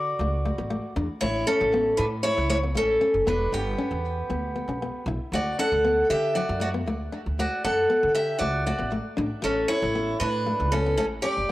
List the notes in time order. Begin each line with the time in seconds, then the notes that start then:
Already playing: D3 F#4 D5
0.19 C#2 A3
0.45 A3
0.58 A1 B3
0.70 A3
0.96 E2 D4
1.21 A1 A3 E4 C#5
1.47 C#4 A4
1.61 A1
1.74 B3
1.97 A2 D4 B4
2.23 A3 E4 C#5
2.38 C#2
2.49 A3 E4 C#5
2.63 B3
2.75 A1 A3 C#4 A4
3.01 C#4
3.14 F#1
3.27 E1 B3 D4 B4
3.52 G1 B3 D4 G4
3.78 C#4
3.91 E2
4.30 D2 B3
4.56 B3
4.68 B1 C#4
4.82 B3
5.06 B1 E4
5.32 D2 A3 F#4 D5
5.59 C#4 A4 F#5
5.72 D2
5.85 B3
6.10 D3 G4 E5
6.35 F#3 F#4 D5
6.49 F#2
6.60 A3 F#4 D5
6.74 B3
6.88 D2 A3
7.12 D4
7.26 D2
7.39 A3 F#4 D5
7.65 F#2 C#4 A4 F#5
7.90 B3
8.03 D3
8.15 G4 E5
8.39 C#2 A3 F#4 D5
8.66 A3 F#4 D5
8.78 A1 B3
8.92 A3
9.17 A1 D4
9.42 A1 C#4 A4, muted nylon-string guitar stroke
9.68 C#4 E4 C#5
9.82 A1
9.95 B3
10.20 A2 D4 B4
10.46 A3
10.60 C#2
10.72 A3 C#4 A4
10.86 B3
10.97 A1 A3 C#4 A4
11.22 C#4 G4 D5
11.37 F#1